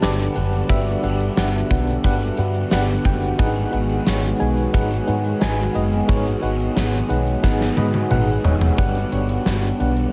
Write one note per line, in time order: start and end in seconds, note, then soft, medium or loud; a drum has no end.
0.00 0.26 G1 loud
0.00 3.35 D3 medium
0.00 3.36 G3 medium
0.00 10.13 B3 medium
0.00 0.02 D4 loud
0.00 0.23 D4 loud
0.00 10.13 F#4 medium
0.00 0.02 G4 loud
0.00 0.23 G4 loud
0.00 0.03 B4 loud
0.00 0.24 B4 loud
0.00 0.24 D5 loud
0.00 0.36 F#5 loud
0.00 3.41 A5 loud
0.00 snare loud
0.00 tambourine medium
0.04 0.70 D3 medium
0.04 0.71 G3 medium
0.19 closed hi-hat soft
0.35 0.60 F#1 medium
0.35 0.56 D4 medium
0.35 0.57 G4 medium
0.35 0.57 B4 medium
0.35 0.57 F#5 medium
0.35 closed hi-hat medium
0.53 closed hi-hat medium
0.69 0.94 G1 loud
0.69 1.03 G2 medium
0.69 1.04 D3 medium
0.69 1.02 G3 loud
0.69 0.90 D4 loud
0.69 0.91 G4 loud
0.69 0.91 B4 loud
0.69 0.91 E5 loud
0.69 kick loud
0.69 closed hi-hat medium
0.87 closed hi-hat medium
1.02 1.27 G1 loud
1.02 2.04 G3 medium
1.02 1.24 D4 medium
1.02 1.24 G4 medium
1.02 1.24 B4 medium
1.02 1.25 F#5 medium
1.02 closed hi-hat medium
1.07 2.04 D3 soft
1.20 closed hi-hat medium
1.36 1.61 G1 loud
1.36 1.58 D4 medium
1.36 1.58 G4 medium
1.36 1.58 B4 medium
1.36 1.58 F#5 medium
1.36 snare loud
1.36 tambourine medium
1.54 closed hi-hat medium
1.70 1.95 B1 medium
1.70 1.92 D4 medium
1.70 1.92 G4 medium
1.70 1.92 B4 medium
1.70 1.92 F#5 medium
1.70 kick medium
1.70 closed hi-hat medium
1.87 closed hi-hat medium
2.04 2.29 G1 medium
2.04 2.72 G2 medium
2.04 2.72 D3 medium
2.04 2.73 G3 medium
2.04 2.26 D4 loud
2.04 2.26 G4 medium
2.04 2.26 B4 medium
2.04 2.26 F#5 loud
2.04 kick medium
2.04 closed hi-hat medium
2.20 closed hi-hat medium
2.37 2.62 G2 loud
2.37 2.59 D4 medium
2.37 2.59 G4 medium
2.37 2.59 B4 medium
2.37 2.60 F#5 medium
2.37 closed hi-hat medium
2.54 closed hi-hat medium
2.71 2.96 G1 loud
2.71 3.40 D3 medium
2.71 3.41 G3 medium
2.71 2.93 D4 loud
2.71 2.93 G4 loud
2.71 2.93 B4 loud
2.71 2.93 F#5 loud
2.71 snare loud
2.71 tambourine medium
2.88 closed hi-hat soft
3.05 3.30 F#1 medium
3.05 3.26 D4 medium
3.05 3.26 G4 medium
3.05 3.26 B4 medium
3.05 3.27 G5 medium
3.05 kick medium
3.05 closed hi-hat medium
3.22 closed hi-hat medium
3.37 3.63 G#1 loud
3.37 4.72 G#2 medium
3.37 4.74 D#3 medium
3.37 8.75 G#3 medium
3.37 3.60 D#4 loud
3.37 3.60 G#4 loud
3.37 3.60 B4 loud
3.37 3.60 F#5 loud
3.37 kick loud
3.37 closed hi-hat medium
3.43 4.75 G#3 medium
3.56 closed hi-hat medium
3.71 3.97 G#1 medium
3.71 3.93 D#4 medium
3.71 3.94 G#4 medium
3.71 3.94 B4 medium
3.71 3.94 F#5 medium
3.71 closed hi-hat medium
3.90 closed hi-hat medium
4.05 4.31 G#1 medium
4.05 4.27 D#4 medium
4.05 4.27 G#4 medium
4.05 4.28 B4 medium
4.05 4.28 C#5 medium
4.05 snare loud
4.05 tambourine medium
4.23 closed hi-hat medium
4.39 4.65 B1 medium
4.39 4.61 D#4 medium
4.39 4.61 G#4 medium
4.39 4.61 B4 medium
4.39 4.61 G#5 medium
4.39 closed hi-hat medium
4.57 closed hi-hat medium
4.73 4.98 G#1 loud
4.73 5.40 G#2 medium
4.73 5.42 D#3 medium
4.73 5.43 G#3 medium
4.73 4.95 D#4 loud
4.73 4.95 G#4 loud
4.73 4.95 B4 loud
4.73 4.95 F#5 loud
4.73 kick loud
4.73 closed hi-hat medium
4.91 closed hi-hat medium
5.07 5.32 G#2 loud
5.07 5.28 D#4 medium
5.07 5.29 G#4 medium
5.07 5.29 B4 medium
5.07 5.29 F#5 medium
5.07 closed hi-hat medium
5.24 closed hi-hat medium
5.40 5.66 G#1 loud
5.40 6.07 G#2 medium
5.40 6.08 D#3 medium
5.40 5.62 D#4 loud
5.40 5.62 G#4 loud
5.40 5.62 B4 loud
5.40 5.62 G#5 loud
5.40 snare loud
5.40 tambourine medium
5.44 6.09 G#3 medium
5.58 closed hi-hat soft
5.74 5.99 F#1 medium
5.74 5.96 D#4 medium
5.74 5.96 G#4 medium
5.74 5.96 B4 medium
5.74 5.96 D#5 medium
5.74 closed hi-hat medium
5.92 closed hi-hat medium
6.07 6.33 G#1 loud
6.07 6.42 G#2 medium
6.07 6.43 D#3 medium
6.07 6.40 G#3 loud
6.07 6.29 D#4 loud
6.07 6.29 G#4 loud
6.07 6.30 B4 loud
6.07 6.30 C#5 loud
6.07 kick loud
6.07 closed hi-hat medium
6.26 closed hi-hat medium
6.41 6.67 G#1 medium
6.41 7.43 D#3 soft
6.41 7.43 G#3 medium
6.41 6.63 D#4 medium
6.41 6.63 G#4 medium
6.41 6.63 B4 medium
6.41 6.64 F#5 medium
6.41 closed hi-hat medium
6.60 closed hi-hat medium
6.75 7.00 G#1 loud
6.75 6.97 D#4 medium
6.75 6.97 G#4 medium
6.75 6.97 B4 medium
6.75 6.97 F#5 medium
6.75 snare loud
6.75 tambourine medium
6.93 closed hi-hat medium
7.08 7.34 B1 medium
7.08 7.30 D#4 medium
7.08 7.30 G#4 medium
7.08 7.31 B4 medium
7.08 7.31 F#5 medium
7.08 closed hi-hat medium
7.27 closed hi-hat medium
7.42 7.68 G#1 loud
7.42 8.09 G#2 medium
7.42 8.10 D#3 medium
7.42 8.12 G#3 medium
7.42 7.64 D#4 loud
7.42 7.65 G#4 loud
7.42 7.65 B4 medium
7.42 7.65 F#5 loud
7.42 kick loud
7.42 snare medium
7.61 snare medium
7.76 8.02 G#2 medium
7.76 7.98 D#4 medium
7.76 7.98 G#4 medium
7.76 7.98 B4 medium
7.76 7.99 D#5 medium
7.76 7.93 B5 medium
7.76 high tom medium
7.94 8.10 G#5 medium
7.94 high tom medium
8.10 8.35 G#1 loud
8.10 8.77 G#2 medium
8.10 8.79 D#3 medium
8.10 8.79 G#3 medium
8.10 8.32 D#4 loud
8.10 8.32 G#4 medium
8.10 8.32 B4 loud
8.10 8.32 F#5 loud
8.10 mid tom medium
8.44 8.69 E1 loud
8.44 8.65 D#4 medium
8.44 8.66 G#4 medium
8.44 8.66 B4 medium
8.44 8.66 C#5 medium
8.44 8.76 D#5 medium
8.44 floor tom loud
8.61 floor tom loud
8.77 9.03 G1 medium
8.77 10.12 G2 medium
8.77 10.13 D3 medium
8.77 10.13 D3 loud
8.77 8.99 D4 loud
8.77 8.99 G4 loud
8.77 8.99 B4 loud
8.77 9.00 F#5 loud
8.77 kick loud
8.77 closed hi-hat medium
8.82 10.13 G3 medium
8.95 closed hi-hat medium
9.11 9.36 G1 medium
9.11 9.33 D4 medium
9.11 9.33 G4 medium
9.11 9.33 B4 medium
9.11 9.33 C#5 medium
9.11 closed hi-hat medium
9.29 closed hi-hat medium
9.45 9.70 G1 loud
9.45 9.67 D4 medium
9.45 9.67 G4 medium
9.45 9.67 B4 medium
9.45 9.68 F#5 medium
9.45 snare loud
9.45 tambourine medium
9.63 closed hi-hat medium
9.79 10.04 B1 medium
9.79 10.00 D4 medium
9.79 10.01 G4 medium
9.79 10.01 B4 medium
9.79 10.01 F#5 medium
9.79 closed hi-hat medium
9.97 closed hi-hat medium